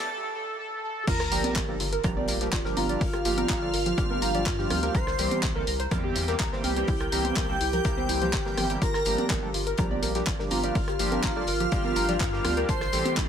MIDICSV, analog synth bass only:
0, 0, Header, 1, 2, 480
1, 0, Start_track
1, 0, Tempo, 483871
1, 1066, Time_signature, 4, 2, 24, 8
1, 13181, End_track
2, 0, Start_track
2, 0, Title_t, "Analog synth bass"
2, 0, Program_c, 0, 38
2, 1066, Note_on_c, 0, 31, 97
2, 1257, Note_off_c, 0, 31, 0
2, 1306, Note_on_c, 0, 31, 93
2, 1404, Note_off_c, 0, 31, 0
2, 1546, Note_on_c, 0, 31, 95
2, 1737, Note_off_c, 0, 31, 0
2, 1785, Note_on_c, 0, 31, 93
2, 1977, Note_off_c, 0, 31, 0
2, 2026, Note_on_c, 0, 34, 95
2, 2217, Note_off_c, 0, 34, 0
2, 2265, Note_on_c, 0, 34, 77
2, 2457, Note_off_c, 0, 34, 0
2, 2506, Note_on_c, 0, 31, 91
2, 2604, Note_off_c, 0, 31, 0
2, 2745, Note_on_c, 0, 31, 91
2, 2937, Note_off_c, 0, 31, 0
2, 2986, Note_on_c, 0, 31, 88
2, 3177, Note_off_c, 0, 31, 0
2, 3224, Note_on_c, 0, 31, 85
2, 3416, Note_off_c, 0, 31, 0
2, 3466, Note_on_c, 0, 31, 82
2, 3657, Note_off_c, 0, 31, 0
2, 3704, Note_on_c, 0, 31, 92
2, 3896, Note_off_c, 0, 31, 0
2, 3946, Note_on_c, 0, 31, 110
2, 4137, Note_off_c, 0, 31, 0
2, 4186, Note_on_c, 0, 31, 89
2, 4426, Note_on_c, 0, 43, 94
2, 4441, Note_off_c, 0, 31, 0
2, 4617, Note_off_c, 0, 43, 0
2, 4666, Note_on_c, 0, 38, 90
2, 4857, Note_off_c, 0, 38, 0
2, 4906, Note_on_c, 0, 36, 96
2, 5097, Note_off_c, 0, 36, 0
2, 5145, Note_on_c, 0, 36, 93
2, 5244, Note_off_c, 0, 36, 0
2, 5386, Note_on_c, 0, 36, 94
2, 5578, Note_off_c, 0, 36, 0
2, 5626, Note_on_c, 0, 36, 97
2, 5817, Note_off_c, 0, 36, 0
2, 5866, Note_on_c, 0, 40, 95
2, 6057, Note_off_c, 0, 40, 0
2, 6105, Note_on_c, 0, 40, 80
2, 6297, Note_off_c, 0, 40, 0
2, 6346, Note_on_c, 0, 36, 91
2, 6444, Note_off_c, 0, 36, 0
2, 6585, Note_on_c, 0, 36, 94
2, 6777, Note_off_c, 0, 36, 0
2, 6826, Note_on_c, 0, 36, 93
2, 7017, Note_off_c, 0, 36, 0
2, 7065, Note_on_c, 0, 36, 85
2, 7257, Note_off_c, 0, 36, 0
2, 7306, Note_on_c, 0, 36, 84
2, 7497, Note_off_c, 0, 36, 0
2, 7545, Note_on_c, 0, 36, 92
2, 7737, Note_off_c, 0, 36, 0
2, 7786, Note_on_c, 0, 36, 106
2, 7977, Note_off_c, 0, 36, 0
2, 8025, Note_on_c, 0, 36, 88
2, 8266, Note_on_c, 0, 31, 93
2, 8281, Note_off_c, 0, 36, 0
2, 8457, Note_off_c, 0, 31, 0
2, 8506, Note_on_c, 0, 31, 86
2, 8697, Note_off_c, 0, 31, 0
2, 8746, Note_on_c, 0, 31, 96
2, 8937, Note_off_c, 0, 31, 0
2, 8986, Note_on_c, 0, 31, 90
2, 9084, Note_off_c, 0, 31, 0
2, 9226, Note_on_c, 0, 31, 93
2, 9417, Note_off_c, 0, 31, 0
2, 9467, Note_on_c, 0, 31, 98
2, 9658, Note_off_c, 0, 31, 0
2, 9707, Note_on_c, 0, 34, 94
2, 9898, Note_off_c, 0, 34, 0
2, 9946, Note_on_c, 0, 34, 80
2, 10137, Note_off_c, 0, 34, 0
2, 10187, Note_on_c, 0, 31, 91
2, 10284, Note_off_c, 0, 31, 0
2, 10427, Note_on_c, 0, 31, 91
2, 10618, Note_off_c, 0, 31, 0
2, 10667, Note_on_c, 0, 31, 90
2, 10858, Note_off_c, 0, 31, 0
2, 10906, Note_on_c, 0, 31, 84
2, 11097, Note_off_c, 0, 31, 0
2, 11147, Note_on_c, 0, 31, 86
2, 11338, Note_off_c, 0, 31, 0
2, 11385, Note_on_c, 0, 31, 92
2, 11577, Note_off_c, 0, 31, 0
2, 11627, Note_on_c, 0, 31, 110
2, 11818, Note_off_c, 0, 31, 0
2, 11866, Note_on_c, 0, 31, 91
2, 12106, Note_on_c, 0, 43, 91
2, 12121, Note_off_c, 0, 31, 0
2, 12298, Note_off_c, 0, 43, 0
2, 12347, Note_on_c, 0, 38, 89
2, 12538, Note_off_c, 0, 38, 0
2, 12586, Note_on_c, 0, 33, 95
2, 12778, Note_off_c, 0, 33, 0
2, 12826, Note_on_c, 0, 33, 94
2, 12924, Note_off_c, 0, 33, 0
2, 13066, Note_on_c, 0, 33, 92
2, 13181, Note_off_c, 0, 33, 0
2, 13181, End_track
0, 0, End_of_file